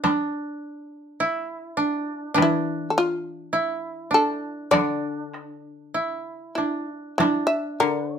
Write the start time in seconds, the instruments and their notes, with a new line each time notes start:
Already playing: koto E4
0.04 koto D4, taiko rim, taiko high
1.20 koto E4
1.77 koto D4
2.34 koto E3 D4, taiko rim, taiko high
2.42 shamisen E4
2.90 shamisen A4
2.98 shamisen F4
3.53 koto E4
4.11 koto D4, shamisen A4
4.71 koto D3 D4, shamisen D5, taiko rim, taiko high
5.34 taiko rim
5.94 koto E4
6.55 koto D4, shamisen E4
6.93 shamisen D4
7.18 koto D4, shamisen E4, taiko rim, taiko high
7.47 shamisen E5
7.80 koto D3, shamisen A#4, taiko rim